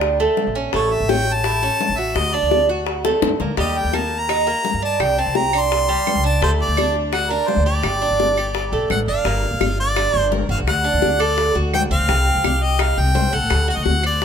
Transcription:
Already playing: D2 D4
0.01 high bongo
0.20 A3, high bongo
0.37 high bongo, low bongo
0.47 A#1
0.55 C#4
0.73 A1 A3 C#5, high bongo
0.91 E5, high bongo
1.00 A1
1.09 C#4 G5, high bongo
1.27 high bongo
1.33 A5
1.44 E4, high bongo
1.63 C#4, high bongo
1.81 high bongo, low bongo
1.89 A1
1.98 F#4 E5
2.15 D2 D#5, high bongo
2.34 D4 D5, high bongo
2.43 D2
2.51 high bongo
2.69 F#4, high bongo
2.87 high bongo
3.05 A3, high bongo
3.22 F#2, low bongo
3.40 D2 A#3, low bongo
3.57 D#2 G3 D#5, high bongo
3.76 G5, high bongo
3.84 D#2
3.93 A#3 A5, high bongo, claves
4.11 high bongo
4.19 A#5
4.29 D#4, high bongo, claves
4.47 A#3, high bongo
4.65 high bongo, low bongo
4.74 G2
4.82 D4 A5
5.00 C2 G5, high bongo, claves
5.18 C4 A5, high bongo
5.26 C2
5.35 A#5, high bongo
5.53 D4, high bongo, claves
5.61 C6
5.72 high bongo
5.89 G3, high bongo
6.07 high bongo, low bongo, claves
6.15 C#2
6.24 D4 A5
6.42 D2 A3 C5, high bongo
6.61 D5, high bongo
6.68 D2
6.77 D4, high bongo, claves
6.96 high bongo
7.13 F#4 F#5, high bongo, claves
7.30 D4 A#4, high bongo
7.48 C5, high bongo, low bongo
7.56 D2
7.66 G4 D5
7.83 G1, high bongo, claves
8.02 D4, high bongo
8.11 G1
8.20 high bongo
8.37 G4, high bongo, claves
8.55 high bongo
8.72 A#1 A3, high bongo
8.90 A1 F#5, high bongo, low bongo, claves
9.08 G1 D4 F5
9.25 G1 A#3, high bongo
9.43 high bongo
9.51 G1
9.60 G1 F4, high bongo, claves
9.79 D5, high bongo
9.96 D4, high bongo, claves
10.14 G1, high bongo
10.32 A#4, high bongo, low bongo
10.49 G1 F#4 F5
10.58 C2
10.67 D2 F#5, high bongo, claves
10.84 D4, high bongo
10.94 D2
11.02 D2, high bongo
11.20 A4 D5, high bongo, claves
11.38 high bongo
11.55 D2 F#4, high bongo
11.74 G5, high bongo, low bongo, claves
11.91 D2 C4 F5
12.00 D2
12.09 C2 C4, high bongo
12.26 high bongo
12.35 C2
12.44 C2 G4, high bongo, claves
12.62 D#5, high bongo
12.79 D#4 F5, high bongo, claves
12.97 C2 G5, high bongo
13.15 C5, high bongo, low bongo
13.33 C2 A4 F#5
13.42 A1
13.50 D2, high bongo, claves
13.68 F#4 F#5, high bongo
13.76 D2 D#5
13.84 D2 F#5, high bongo
14.03 C5 D5, high bongo, claves
14.22 high bongo

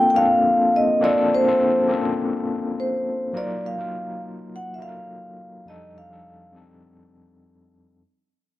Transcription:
Already playing: A#3 C4 D4 F4 A4
0.10 A#3 G5
0.15 C4 D4 F4 A4 F5
0.76 D#5
1.01 A#3 C4 D4 F4 A4 D5
1.34 C5
1.44 A#3 C4 D4 F4
1.49 A4
1.88 A#3 C4 C#4 F4 A4
1.97 D4
2.80 C5
3.33 F#3 A#3 D#4 F4 A#4 D5
3.66 F5
3.77 F#3 A#3 D#4 F4 A#4
4.56 F#5
4.74 E5
4.78 F#3 A#3 D#4 F4 F5
4.82 A4
4.89 A#4
5.65 F2 G3 C4 D4 D#4 A4 D#5
5.98 F5
6.09 F2 G3 C4 D4 D#4 A4
6.53 F2 G3 C4 D4 D#4
6.57 A4

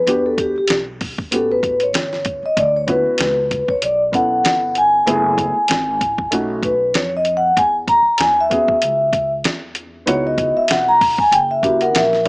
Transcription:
Already playing: B4
0.06 E2 B3 D4 F#4 G4, closed hi-hat
0.26 A4
0.38 G4, kick, closed hi-hat
0.56 G4, muted upright bass stroke
0.68 B1, snare, closed hi-hat
1.01 kick, open hi-hat
1.18 muted upright bass stroke, kick
1.31 A1 B3 C#4 F#4 G4 A4, closed hi-hat
1.52 B4
1.63 kick, closed hi-hat
1.80 C#5, closed hi-hat
1.93 G1, snare, closed hi-hat
2.13 snare
2.25 kick, closed hi-hat
2.43 D#5, muted upright bass stroke
2.57 D2 D5, kick, closed hi-hat
2.76 C#5
2.87 B3 C#4 E4 F#4 B4, kick, closed hi-hat
3.06 muted upright bass stroke
3.18 C#2, snare, closed hi-hat
3.51 kick, closed hi-hat
3.68 C#5, kick
3.82 B1 D5, closed hi-hat
4.12 B3 C#4 E4 A4 F#5, kick, closed hi-hat
4.44 G1, snare, closed hi-hat
4.75 G#5, closed hi-hat
5.06 F#1 A3 B3 E4 G#4, closed hi-hat
5.38 kick, closed hi-hat
5.57 muted upright bass stroke
5.68 G#1, snare, closed hi-hat
6.01 A1, kick, closed hi-hat
6.18 kick
6.31 B1 A3 C#4 D#4 F#4, closed hi-hat
6.63 B4, kick, closed hi-hat
6.94 F2 C#5, snare, closed hi-hat
7.17 D#5
7.25 closed hi-hat
7.37 F#5
7.57 E2 G#5, kick, closed hi-hat
7.88 A#5, kick, closed hi-hat
8.06 muted upright bass stroke
8.18 D#2 G#5, snare, closed hi-hat
8.41 E5
8.50 B3 C#4 F#4 G#4, kick, closed hi-hat
8.68 muted upright bass stroke, kick
8.82 C#2, closed hi-hat
9.13 kick, closed hi-hat
9.44 E2, snare, closed hi-hat
9.75 closed hi-hat
10.06 C#2 B3 D#4 E4 F#4 C#5, closed hi-hat
10.27 D#5
10.38 kick, closed hi-hat
10.57 E5, muted upright bass stroke
10.68 B1 F#5, snare, closed hi-hat
10.89 A#5
11.01 kick, open hi-hat
11.18 G#5, muted upright bass stroke, kick
11.31 F#1 G5, closed hi-hat
11.51 E5
11.62 A#3 C#4 E4 F#4 G4, kick, closed hi-hat
11.81 A#4 F#5, closed hi-hat
11.94 A#1 E5, snare, closed hi-hat
12.13 snare
12.24 A#3 C#4

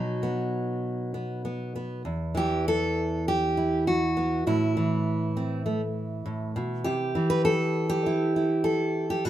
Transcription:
Already playing: B2 F#3 D#4
0.23 B3
1.14 B3
1.45 B3
1.76 B3
2.05 E2
2.35 E3 G4
2.68 A4
3.28 G4
3.57 E4
3.87 F#4
4.17 B3
4.47 A2 E4
4.77 E3
5.37 C4
5.66 A3
6.26 A2
6.56 B2
6.84 C3 G4
7.15 E3
7.30 B4
7.45 A4
7.90 G4
8.06 E4
8.36 E4
8.64 A4
9.10 G4
9.25 B2 F#4

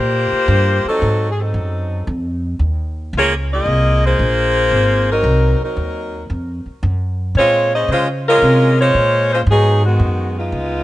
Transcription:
Already playing: A#2 A#3 F4 G4 C5
0.32 muted upright bass stroke
0.48 G2
0.85 F#3 C4 D#4 A4, muted upright bass stroke
1.02 G#2
1.31 G#4
1.40 F#3 C4 D#4 A4
1.54 F#2
2.07 F2
2.59 D#2
3.13 C#2
3.17 A#3 F4 G#4 C#5
3.53 A#3 F4 G#4 D#5
3.66 C2
4.05 A#3 F4 G#4 C5
4.19 A#1
4.71 G#1
5.10 F#3 C4 D#4 A#4
5.23 C2
5.60 F#3 C4 D#4 A#4, muted upright bass stroke
5.76 D#2
6.30 F2
6.66 muted upright bass stroke
6.83 F#2
7.35 A#2 G#3 C4 F4 C#5
7.74 C#4 G#4 C5 D#5
7.88 C#3 G#3 C#4 F4 C5
8.27 G#3 C#4 F4 A#4
8.42 C3
8.81 G#3 F4 C5 C#5
8.94 A#2
9.33 G#3 C#4 F4 C5
9.47 G#2 F#3 B3 D#4 G#4
9.85 D#3 G#3 B3 F#4
10.00 F#2
10.39 G#3 B3 D#4 F4
10.52 C#2

